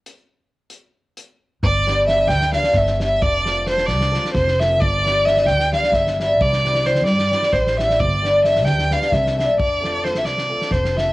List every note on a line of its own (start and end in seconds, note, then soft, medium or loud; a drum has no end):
0.06 closed hi-hat medium
0.70 closed hi-hat soft
1.17 closed hi-hat soft
1.63 2.29 G1 medium
1.63 2.05 D5 loud
1.63 kick medium
1.87 2.05 G3 medium
1.87 2.02 B3 medium
1.87 2.02 D4 soft
1.87 2.02 G4 medium
1.87 snare soft
2.06 2.52 G3 soft
2.06 2.22 B3 soft
2.06 2.22 D4 soft
2.06 2.22 G4 soft
2.06 2.29 E5 medium
2.06 snare soft
2.27 2.56 D2 medium
2.27 2.54 G5 loud
2.27 snare soft
2.41 snare soft
2.53 2.99 G3 medium
2.53 2.69 B3 medium
2.53 2.70 D4 medium
2.53 2.70 G4 medium
2.53 2.78 F5 medium
2.53 snare soft
2.63 snare soft
2.73 3.22 G1 medium
2.73 3.01 E5 medium
2.73 kick medium
2.73 snare soft
2.86 snare soft
3.00 3.28 G3 soft
3.00 3.16 B3 soft
3.00 3.16 D4 soft
3.00 3.16 G4 medium
3.00 3.23 E5 medium
3.00 snare soft
3.22 3.89 F1 medium
3.22 3.66 D5 loud
3.22 kick medium
3.45 3.60 A3 medium
3.45 3.61 C4 medium
3.45 3.61 F4 medium
3.45 3.62 A4 medium
3.45 snare soft
3.66 3.81 A3 soft
3.66 3.81 C4 soft
3.66 3.82 F4 soft
3.66 3.82 A4 soft
3.66 3.88 C5 medium
3.66 snare soft
3.77 snare soft
3.86 4.16 C2 medium
3.86 4.33 D5 medium
3.86 snare soft
4.01 snare soft
4.11 4.27 A3 medium
4.11 4.28 C4 medium
4.11 4.28 F4 medium
4.11 4.28 A4 medium
4.11 snare soft
4.25 snare soft
4.33 4.81 F1 medium
4.33 4.61 C5 medium
4.33 kick medium
4.33 snare soft
4.48 snare soft
4.60 4.75 A3 soft
4.60 4.75 C4 medium
4.60 4.76 F4 soft
4.60 4.76 A4 medium
4.60 4.82 E5 medium
4.60 snare soft
4.80 5.47 G1 medium
4.80 5.27 D5 loud
4.80 kick medium
5.05 5.25 G3 medium
5.05 5.20 B3 soft
5.05 5.20 D4 medium
5.05 5.20 G4 medium
5.05 snare soft
5.25 5.71 G3 soft
5.25 5.41 B3 soft
5.25 5.41 D4 medium
5.25 5.41 G4 soft
5.25 5.48 E5 medium
5.25 snare soft
5.37 snare soft
5.45 5.74 D2 medium
5.45 5.73 G5 loud
5.45 snare soft
5.59 snare soft
5.72 6.19 G3 medium
5.72 5.87 B3 medium
5.72 5.88 D4 soft
5.72 5.88 G4 medium
5.72 5.96 F5 medium
5.72 snare soft
5.83 snare soft
5.92 6.40 G1 medium
5.92 6.20 E5 medium
5.92 kick medium
5.92 snare soft
6.07 snare soft
6.20 6.46 G3 medium
6.20 6.35 B3 soft
6.20 6.35 D4 medium
6.20 6.36 G4 medium
6.20 6.43 E5 medium
6.20 snare soft
6.40 7.04 C2 medium
6.40 6.88 D5 medium
6.40 kick medium
6.53 snare soft
6.64 6.83 G3 medium
6.64 6.79 C4 medium
6.64 6.79 E4 medium
6.64 6.80 G4 medium
6.64 snare soft
6.75 snare soft
6.84 7.30 G3 soft
6.84 6.99 C4 soft
6.84 7.00 E4 soft
6.84 7.00 G4 soft
6.84 7.06 C5 medium
6.84 snare soft
6.95 snare soft
7.04 7.33 G2 medium
7.04 7.55 D5 medium
7.04 snare soft
7.19 snare soft
7.31 7.77 G3 medium
7.31 7.46 C4 medium
7.31 7.47 E4 medium
7.31 7.47 G4 medium
7.31 snare soft
7.42 snare soft
7.53 8.02 A1 medium
7.53 7.79 C5 medium
7.53 kick soft
7.53 snare soft
7.67 snare soft
7.77 8.05 G3 medium
7.77 7.94 C4 medium
7.77 7.94 E4 soft
7.77 7.95 G4 medium
7.77 8.01 E5 medium
7.77 snare soft
7.90 snare soft
7.99 8.64 G1 medium
7.99 8.44 D5 medium
7.99 kick medium
8.22 8.43 G3 medium
8.22 8.38 B3 medium
8.22 8.38 D4 medium
8.22 8.38 G4 medium
8.22 snare soft
8.44 8.90 G3 medium
8.44 8.59 B3 soft
8.44 8.59 D4 soft
8.44 8.59 G4 medium
8.44 8.67 E5 medium
8.44 snare soft
8.56 snare soft
8.64 8.93 D2 medium
8.64 8.94 G5 medium
8.64 snare soft
8.78 snare soft
8.91 9.36 G3 medium
8.91 9.06 B3 medium
8.91 9.06 D4 soft
8.91 9.06 G4 medium
8.91 9.15 F5 medium
8.91 snare soft
9.02 snare soft
9.12 9.60 C2 medium
9.12 9.38 E5 medium
9.12 kick medium
9.12 snare soft
9.26 snare soft
9.37 9.64 G3 medium
9.37 9.52 B3 medium
9.37 9.53 D4 medium
9.37 9.53 G4 medium
9.37 9.58 E5 medium
9.37 snare soft
9.60 10.24 F1 medium
9.60 10.06 D5 medium
9.60 kick medium
9.81 9.96 A3 medium
9.81 9.97 C4 medium
9.81 9.97 F4 medium
9.81 9.97 A4 medium
9.81 snare soft
10.03 10.17 A3 soft
10.03 10.18 C4 soft
10.03 10.18 F4 soft
10.03 10.18 A4 soft
10.03 10.19 C5 medium
10.03 snare soft
10.15 10.27 E5 medium
10.15 snare soft
10.24 10.52 C2 medium
10.24 10.74 D5 medium
10.24 snare soft
10.38 snare soft
10.49 10.64 A3 medium
10.49 10.64 C4 medium
10.49 10.65 F4 medium
10.49 10.65 A4 medium
10.61 snare soft
10.71 11.13 F1 medium
10.71 10.99 C5 medium
10.71 kick medium
10.71 snare soft
10.85 snare soft
10.94 11.10 A3 medium
10.94 11.11 C4 soft
10.94 11.11 F4 medium
10.94 11.11 A4 medium
10.94 11.09 E5 medium
10.94 snare soft
11.09 11.13 E5 medium